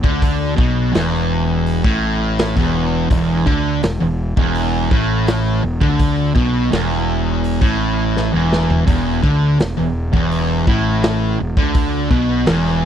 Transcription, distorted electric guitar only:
0.03 0.56 D3 loud
0.56 0.92 B2 loud
0.92 1.82 E2 loud
1.84 2.55 A2 loud
2.57 3.09 E2 loud
3.10 3.45 E2 loud
3.46 3.81 D3 loud
3.83 3.99 E2 medium
4.00 4.29 E2 medium
4.37 4.90 E2 loud
4.91 5.62 A2 loud
5.63 5.81 E2 medium
5.81 6.34 D3 loud
6.35 6.70 B2 loud
6.71 7.60 E2 loud
7.61 8.32 A2 medium
8.33 8.85 E2 loud
8.87 9.22 E2 loud
9.22 9.57 D3 medium
9.58 9.76 E2 medium
9.77 10.06 E2 medium
10.13 10.66 E2 medium
10.67 11.38 A2 loud
11.40 11.57 E2 medium
11.57 12.10 D3 loud
12.11 12.46 B2 medium
12.46 12.85 E2 loud

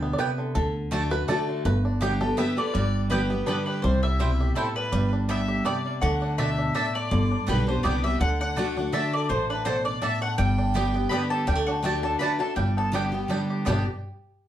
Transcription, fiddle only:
2.37 2.56 E5 medium
2.57 3.07 D5 medium
3.10 3.44 B4 medium
3.47 3.66 B4 medium
3.68 3.83 B4 medium
3.84 4.02 C5 medium
4.04 4.53 E5 medium
4.58 4.76 A4 medium
4.76 5.10 B4 medium
5.29 5.63 E5 medium
5.66 6.00 D5 medium
6.02 6.36 F#5 medium
6.39 6.73 E5 medium
6.75 6.93 E5 medium
6.93 7.43 D5 medium
7.49 7.67 B4 medium
7.68 7.83 C5 medium
7.84 8.03 D5 medium
8.04 8.19 E5 medium
8.20 8.39 F#5 medium
8.39 8.89 F#5 medium
8.95 9.13 E5 medium
9.15 9.30 D5 medium
9.30 9.49 C5 medium
9.52 9.66 B4 medium
9.67 9.85 C5 medium
9.87 10.02 D5 medium
10.03 10.21 E5 medium
10.24 10.39 F#5 medium
10.40 11.08 G5 medium
11.12 11.30 B4 medium
11.30 11.46 A4 medium
11.47 11.66 G4 medium
11.68 11.83 F#4 medium
11.85 12.02 G4 medium
12.03 12.19 A4 medium
12.19 12.38 B4 medium
12.39 12.55 A4 medium
12.56 12.75 G4 medium
12.76 12.92 A4 medium
12.93 13.27 G4 medium
13.67 13.85 G4 medium

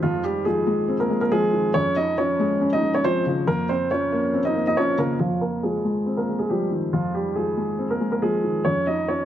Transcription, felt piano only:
0.00 0.03 F2 medium
0.00 1.10 F2 medium
0.00 0.88 D#3 medium
0.00 0.46 F3 loud
0.00 0.67 G#3 loud
0.00 0.24 C4 medium
0.46 1.30 F3 medium
0.67 1.08 G#3 medium
0.88 1.75 C4 medium
1.10 1.75 G#3 medium
1.32 1.75 F3 loud
1.53 1.75 D#3 medium
1.75 2.83 F2 medium
2.18 3.03 F3 medium
2.39 2.80 G#3 loud
2.61 3.47 C#4 medium
2.82 3.47 G#3 medium
3.05 3.48 F3 loud
3.26 3.48 C#3 medium
3.47 4.55 F2 medium
3.91 4.75 F3 medium
4.12 4.53 A#3 loud
4.34 5.20 C4 medium
4.55 5.20 A#3 medium
4.77 5.20 F3 loud
4.98 5.20 C#3 medium
5.20 6.28 F2 medium
5.63 6.48 F3 medium
5.84 6.27 G#3 medium
6.06 7.14 C4 medium
6.29 7.36 G#3 medium
6.50 7.35 F3 loud
6.71 7.79 D#3 medium
6.93 8.01 F2 medium
7.36 8.21 F3 medium
7.57 7.99 G#3 medium
7.79 8.65 C4 medium
8.00 8.65 G#3 medium
8.22 8.65 F3 medium
8.44 8.65 D#3 medium
8.66 9.25 F2 medium
9.09 9.25 F3 medium

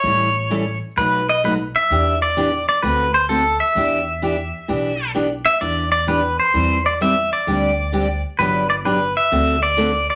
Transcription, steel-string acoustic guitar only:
0.05 0.28 E3 soft
0.05 0.28 G3 soft
0.05 0.28 C#4 medium
0.05 0.28 E4 medium
0.05 0.28 A4 medium
0.50 0.63 E3 medium
0.50 0.63 G3 medium
0.50 0.63 C#4 medium
0.50 0.63 E4 medium
0.50 0.63 A4 medium
0.97 1.20 B2 medium
0.97 1.20 F#3 medium
0.97 1.20 A3 medium
0.97 1.20 D#4 medium
0.97 1.20 F#4 medium
1.44 1.56 B2 medium
1.44 1.56 F#3 medium
1.44 1.56 A3 medium
1.44 1.56 D#4 medium
1.44 1.56 F#4 medium
1.91 2.13 E3 soft
1.91 2.14 B3 medium
1.91 2.14 D4 medium
1.91 2.14 G4 medium
2.37 2.49 E3 medium
2.37 2.49 B3 medium
2.37 2.49 D4 medium
2.37 2.49 G4 medium
2.83 3.06 D3 medium
2.83 3.06 A3 medium
2.83 3.06 C4 medium
2.83 3.06 F#4 medium
2.83 3.06 A4 medium
3.29 3.41 D3 medium
3.29 3.41 A3 medium
3.29 3.42 C4 medium
3.29 3.42 F#4 medium
3.29 3.42 A4 medium
3.76 3.99 E3 medium
3.76 3.99 B3 medium
3.76 3.99 D4 medium
3.76 3.99 G4 medium
4.22 4.34 E3 medium
4.22 4.35 B3 medium
4.22 4.35 D4 medium
4.22 4.35 G4 medium
4.68 4.91 E3 medium
4.68 4.91 B3 medium
4.68 4.92 D4 medium
4.68 4.92 G4 medium
5.15 5.27 E3 medium
5.15 5.27 B3 medium
5.15 5.27 D4 medium
5.15 5.27 G4 medium
5.61 5.84 E3 medium
5.61 5.84 B3 medium
5.61 5.84 D4 medium
5.61 5.84 G4 medium
6.07 6.19 E3 medium
6.07 6.20 B3 medium
6.07 6.20 D4 medium
6.07 6.20 G4 medium
6.54 6.77 E3 medium
6.54 6.77 G3 medium
6.54 6.77 C4 medium
6.54 6.77 E4 medium
6.54 6.77 B4 medium
7.01 7.13 E3 medium
7.01 7.13 G3 medium
7.01 7.13 C4 medium
7.01 7.13 E4 medium
7.01 7.13 B4 medium
7.47 7.70 D3 medium
7.47 7.70 G3 medium
7.47 7.70 C4 medium
7.47 7.70 D4 medium
7.47 7.70 G4 medium
7.92 8.05 D3 medium
7.92 8.05 G3 medium
7.92 8.05 C4 medium
7.92 8.05 D4 medium
7.92 8.06 G4 medium
8.40 8.62 D3 medium
8.40 8.62 F#3 medium
8.40 8.63 B3 medium
8.40 8.63 D4 medium
8.40 8.63 G4 medium
8.85 8.97 D3 medium
8.85 8.97 F#3 medium
8.85 8.98 B3 medium
8.85 8.98 D4 medium
8.85 8.98 G4 medium
9.31 9.55 D3 medium
9.31 9.55 A3 medium
9.31 9.55 C4 medium
9.31 9.55 F#4 medium
9.31 9.55 A4 medium
9.77 9.90 D3 medium
9.77 9.90 A3 medium
9.77 9.90 C4 medium
9.77 9.90 F#4 medium
9.77 9.90 A4 medium

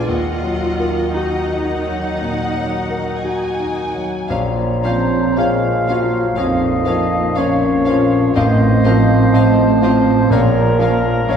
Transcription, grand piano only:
0.00 0.12 A#1 soft
0.00 0.11 G#3 soft
0.00 0.12 D4 soft
0.00 0.12 B4 soft
0.08 2.17 D#2 soft
0.43 1.00 F#3 soft
0.79 1.37 A#4 soft
1.16 1.73 F#4 soft
1.53 2.08 D#4 soft
1.88 2.42 F#3 soft
2.21 2.76 A#2 soft
2.57 3.11 F#3 soft
2.90 3.46 A#4 soft
3.25 3.81 F#4 soft
3.60 4.17 D#4 soft
3.95 4.30 F#3 soft
4.30 6.33 A#1 medium
4.85 5.69 F3 soft
5.38 6.18 C#5 soft
5.88 6.67 F4 soft
6.37 7.17 F2 soft
6.87 7.67 F3 soft
7.37 8.17 C#5 soft
7.87 8.36 F4 soft
8.37 10.27 A1 medium
8.86 9.63 F3 soft
9.34 10.12 D#5 soft
9.82 10.31 F4 soft
10.30 11.37 A#1 medium
10.79 11.37 F3 soft
11.29 11.37 C#5 soft

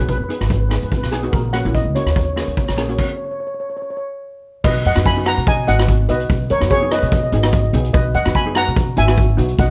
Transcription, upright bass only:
0.00 0.18 B1 medium
0.20 0.29 F#2 medium
0.41 0.78 G#1 medium
0.83 1.01 G#1 medium
1.04 1.31 B1 medium
1.33 1.62 A#1 medium
1.65 1.84 A#1 medium
1.85 1.94 C#2 medium
2.06 2.44 D#2 medium
2.47 2.67 D#2 medium
2.69 2.96 A#1 medium
4.64 4.83 B1 loud
4.86 4.96 F#2 medium
4.97 5.34 F#2 medium
5.38 5.65 B2 medium
5.68 6.06 G#1 medium
6.09 6.28 B1 medium
6.30 6.48 B1 loud
6.50 6.60 F#2 medium
6.62 6.99 F#2 medium
7.03 7.30 B2 medium
7.32 7.70 G#1 medium
7.73 7.92 B1 loud
7.94 8.13 B1 loud
8.15 8.25 F#2 medium
8.26 8.64 F#2 medium
8.68 8.95 B2 medium
8.98 9.35 G#1 medium
9.38 9.57 B1 loud
9.59 9.70 B1 loud

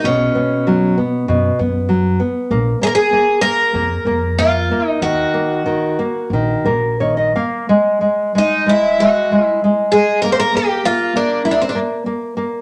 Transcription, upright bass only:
0.04 0.25 B1 medium
1.29 1.49 F#2 medium
1.59 2.19 F#2 loud
2.51 2.71 A#1 medium
3.74 3.95 F2 loud
4.05 4.67 F2 medium
5.01 5.22 D#2 medium
6.30 6.52 A#1 medium
6.65 7.32 A#1 medium

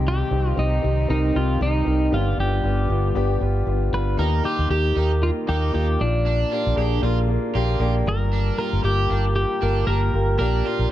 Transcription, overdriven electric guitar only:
4.19 4.44 D#4 medium
4.45 4.70 F4 medium
4.71 4.95 G4 medium
4.97 5.11 D#4 medium
5.49 5.87 D#4 medium
6.26 6.51 D4 medium
6.52 6.76 F4 medium
6.78 7.03 G4 medium
7.03 7.17 F4 medium
7.55 7.93 F4 medium
8.33 8.58 D4 medium
8.59 8.83 F4 medium
8.84 9.09 G4 medium
9.10 9.24 D4 medium
9.62 10.00 D4 medium
10.39 10.64 D4 medium
10.66 10.90 F4 medium

